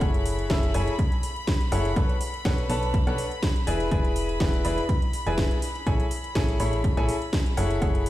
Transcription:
0.00 0.48 F#1 medium
0.00 0.47 E4 medium
0.00 0.47 G#4 medium
0.00 0.47 A4 medium
0.00 0.47 C#5 medium
0.00 0.47 F#5 medium
0.00 8.10 B5 medium
0.00 kick loud
0.00 closed hi-hat medium
0.14 closed hi-hat soft
0.26 open hi-hat loud
0.39 closed hi-hat soft
0.50 0.72 F#1 loud
0.50 0.71 E4 medium
0.50 0.71 G#4 medium
0.50 0.71 A4 medium
0.50 0.71 C#5 medium
0.50 0.71 E5 medium
0.50 kick loud
0.50 snare loud
0.50 closed hi-hat medium
0.63 closed hi-hat soft
0.74 0.89 F#1 medium
0.74 0.92 E4 medium
0.74 0.92 G#4 medium
0.74 0.92 A4 medium
0.74 0.92 C#5 medium
0.74 0.92 G#5 loud
0.74 open hi-hat loud
0.88 closed hi-hat soft
0.99 kick loud
0.99 closed hi-hat medium
1.12 closed hi-hat soft
1.23 open hi-hat loud
1.36 closed hi-hat soft
1.47 kick loud
1.47 snare loud
1.47 closed hi-hat medium
1.61 closed hi-hat soft
1.72 1.94 F#1 loud
1.72 1.89 E4 medium
1.72 1.89 G#4 medium
1.72 1.89 A4 medium
1.72 1.89 C#5 medium
1.72 1.89 F#5 loud
1.72 open hi-hat loud
1.85 closed hi-hat soft
1.96 2.11 B1 loud
1.96 2.13 D4 medium
1.96 2.13 A4 medium
1.96 2.13 B4 medium
1.96 2.13 C#5 medium
1.96 2.13 F#5 medium
1.96 kick loud
1.96 closed hi-hat medium
2.09 closed hi-hat soft
2.21 open hi-hat loud
2.34 closed hi-hat soft
2.45 2.67 B1 loud
2.45 2.66 D4 medium
2.45 2.66 A4 medium
2.45 2.66 B4 medium
2.45 2.66 C#5 medium
2.45 2.66 F#5 medium
2.45 kick loud
2.45 snare loud
2.45 closed hi-hat medium
2.58 closed hi-hat soft
2.69 3.04 B1 loud
2.69 3.04 D4 medium
2.69 3.04 A4 medium
2.69 3.04 B4 medium
2.69 3.04 C#5 medium
2.69 3.04 A5 medium
2.69 open hi-hat loud
2.83 closed hi-hat soft
2.94 kick loud
2.94 closed hi-hat medium
3.07 3.20 B1 loud
3.07 3.23 D4 medium
3.07 3.23 A4 medium
3.07 3.23 B4 medium
3.07 3.23 C#5 medium
3.07 3.23 F#5 loud
3.07 closed hi-hat soft
3.18 open hi-hat loud
3.31 closed hi-hat soft
3.43 kick loud
3.43 snare loud
3.43 closed hi-hat medium
3.56 closed hi-hat soft
3.67 3.89 E1 loud
3.67 3.89 E4 medium
3.67 3.89 G#4 medium
3.67 3.89 B4 medium
3.67 3.89 D5 medium
3.67 3.89 G#5 loud
3.67 open hi-hat loud
3.80 closed hi-hat soft
3.91 4.38 E1 loud
3.91 4.38 E4 medium
3.91 4.38 G#4 medium
3.91 4.38 B4 medium
3.91 4.38 D5 medium
3.91 4.38 G#5 medium
3.91 kick loud
3.91 closed hi-hat medium
4.05 closed hi-hat soft
4.16 open hi-hat loud
4.29 closed hi-hat soft
4.40 4.62 E1 loud
4.40 4.61 E4 medium
4.40 4.61 G#4 medium
4.40 4.61 B4 medium
4.40 4.61 D5 medium
4.40 4.61 F#5 medium
4.40 kick loud
4.40 snare loud
4.40 closed hi-hat medium
4.53 closed hi-hat soft
4.65 4.80 E1 loud
4.65 4.82 E4 medium
4.65 4.82 G#4 medium
4.65 4.82 B4 medium
4.65 4.82 D5 medium
4.65 4.82 B5 medium
4.65 open hi-hat loud
4.78 closed hi-hat soft
4.89 kick loud
4.89 closed hi-hat medium
5.02 closed hi-hat soft
5.13 open hi-hat medium
5.27 5.51 E1 loud
5.27 5.53 E4 medium
5.27 5.53 G#4 medium
5.27 5.53 B4 medium
5.27 5.53 D5 medium
5.27 5.53 G#5 medium
5.27 closed hi-hat soft
5.38 kick loud
5.38 snare loud
5.38 closed hi-hat medium
5.51 closed hi-hat soft
5.62 open hi-hat loud
5.75 closed hi-hat soft
5.87 6.01 A1 loud
5.87 6.04 E4 medium
5.87 6.04 G#4 medium
5.87 6.04 A4 medium
5.87 6.04 C#5 medium
5.87 6.04 G#5 medium
5.87 kick loud
5.87 closed hi-hat medium
6.00 closed hi-hat soft
6.11 open hi-hat loud
6.24 closed hi-hat soft
6.35 6.58 A1 loud
6.35 6.56 E4 medium
6.35 6.56 G#4 medium
6.35 6.56 A4 medium
6.35 6.56 C#5 medium
6.35 6.56 G#5 medium
6.35 kick loud
6.35 snare loud
6.35 closed hi-hat medium
6.48 closed hi-hat soft
6.60 6.95 A1 loud
6.60 6.94 E4 medium
6.60 6.94 G#4 medium
6.60 6.94 A4 medium
6.60 6.94 C#5 medium
6.60 6.94 B5 medium
6.60 open hi-hat loud
6.73 closed hi-hat soft
6.84 kick loud
6.84 closed hi-hat medium
6.97 7.11 A1 loud
6.97 7.13 E4 loud
6.97 7.13 G#4 medium
6.97 7.13 A4 medium
6.97 7.13 C#5 medium
6.97 7.13 G#5 loud
6.97 closed hi-hat soft
7.09 open hi-hat loud
7.22 closed hi-hat soft
7.33 kick loud
7.33 snare loud
7.33 closed hi-hat medium
7.46 closed hi-hat soft
7.57 7.79 F#1 loud
7.57 7.79 E4 medium
7.57 7.79 G#4 medium
7.57 7.79 A4 medium
7.57 7.79 C#5 medium
7.57 7.79 F#5 loud
7.57 open hi-hat loud
7.70 closed hi-hat soft
7.82 8.10 F#1 medium
7.82 8.10 E4 medium
7.82 8.10 G#4 medium
7.82 8.10 A4 medium
7.82 8.10 C#5 medium
7.82 8.10 F#5 medium
7.82 kick loud
7.82 closed hi-hat medium
7.95 closed hi-hat soft
8.06 open hi-hat loud

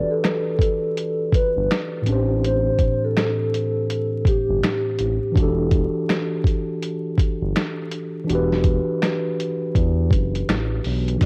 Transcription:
0.00 2.00 E3 medium
0.00 2.01 D4 medium
0.00 2.02 F#4 medium
0.00 2.04 G4 medium
0.00 2.05 A4 medium
0.00 2.08 B4 medium
0.00 2.08 D5 medium
0.11 1.30 A4 medium
0.24 finger snap medium
0.24 snare loud
0.24 closed hi-hat medium
0.59 kick medium
0.59 closed hi-hat medium
0.97 closed hi-hat medium
1.32 1.67 B4 medium
1.32 kick loud
1.32 closed hi-hat medium
1.56 1.68 G1 loud
1.71 finger snap medium
1.71 snare loud
1.71 closed hi-hat medium
2.02 4.93 A2 medium
2.02 4.94 E3 medium
2.06 2.71 A1 medium
2.06 4.95 C4 medium
2.06 4.96 D4 medium
2.06 closed hi-hat medium
2.10 4.97 G4 medium
2.10 4.98 C5 medium
2.44 3.00 C5 loud
2.44 closed hi-hat medium
2.79 kick medium
2.79 closed hi-hat medium
3.04 4.23 A4 medium
3.17 finger snap medium
3.17 snare loud
3.17 closed hi-hat medium
3.54 closed hi-hat medium
3.90 closed hi-hat medium
4.25 5.33 G4 medium
4.25 kick loud
4.25 closed hi-hat medium
4.49 4.61 G1 medium
4.63 finger snap medium
4.63 snare loud
4.63 closed hi-hat medium
4.99 5.19 A1 medium
4.99 closed hi-hat medium
5.32 8.22 E3 medium
5.32 8.24 D4 medium
5.32 kick loud
5.36 5.87 E1 loud
5.36 8.25 F#4 medium
5.36 8.26 G4 medium
5.36 closed hi-hat medium
5.42 8.28 A4 medium
5.71 kick medium
5.71 closed hi-hat medium
6.09 finger snap medium
6.09 snare loud
6.09 closed hi-hat medium
6.44 kick loud
6.44 closed hi-hat medium
6.83 closed hi-hat medium
7.18 kick loud
7.18 closed hi-hat medium
7.42 7.54 G1 medium
7.56 finger snap medium
7.56 snare loud
7.56 closed hi-hat medium
7.91 closed hi-hat medium
8.24 11.15 E3 medium
8.24 11.16 D4 medium
8.29 8.80 E1 loud
8.29 11.18 F#4 medium
8.29 11.19 G4 medium
8.29 closed hi-hat medium
8.35 11.20 B4 medium
8.52 snare soft
8.64 kick medium
8.64 closed hi-hat medium
9.02 finger snap medium
9.02 snare medium
9.02 closed hi-hat medium
9.40 closed hi-hat medium
9.75 10.13 E2 loud
9.75 kick loud
9.75 closed hi-hat medium
10.11 10.43 F#1 medium
10.11 kick loud
10.11 closed hi-hat medium
10.35 closed hi-hat medium
10.49 10.80 A1 medium
10.49 finger snap medium
10.49 snare loud
10.49 closed hi-hat medium
10.84 11.17 B1 medium
10.84 open hi-hat soft
11.08 closed hi-hat soft
11.16 11.26 E3 medium
11.16 11.26 D4 medium
11.21 11.26 E1 medium
11.21 11.26 F#4 medium
11.21 kick loud
11.21 closed hi-hat medium
11.21 crash medium

